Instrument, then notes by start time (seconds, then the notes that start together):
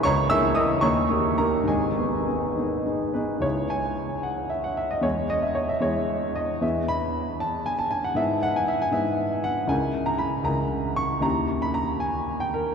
grand piano
0.03 C#2 C#5 A#5 C#6
0.30 A#3 E4 G#4 E5 E6
0.55 A#3 E4 G#4 D#5 D#6
0.81 D#2 C#5 A#5 C#6
1.10 A#3 D#4 G4
1.38 A#3 D#4 G4 A#4 A#5
1.63 G#2
1.68 G#1 G#4 D#5 G#5
1.98 B3 D#4 G#4
2.28 B3 D#4 G#4
2.57 B3 D#4 G#4
2.86 B3 D#4 G#4
3.14 B3 D#4 G#4 B4
3.40 C#2 G#3 E4 G#4 C#5
3.70 G#5
4.23 F#5
4.50 E5
4.64 F#5
4.77 E5
4.91 D#5
5.01 E2 G#3 E4 G#4 C#5
5.30 D#5
5.42 E5
5.55 C#5
5.69 E5
5.80 E2 G#3 E4 G#4 C#5
6.36 D#5
6.61 E2 B3 E4 G#4 E5
6.88 B5
7.40 A5
7.66 G#5
7.79 A5
7.91 G#5
8.04 F#5
8.15 G#2 B3 E4 G#4 E5
8.43 F#5
8.56 G#5
8.68 E5
8.82 G#5
8.91 G#2 B3 E4 G#4 E5
9.44 F#5
9.67 C#2 C#4 E4 A#4 G#5
10.06 A#5
10.18 B5
10.43 C#2 C#4 E4 A#4 A#5
10.96 C#6
11.21 D#2 C#4 E4 G4 A#5
11.62 B5
11.74 A#5
12.00 G#5
12.40 G5
12.54 A#4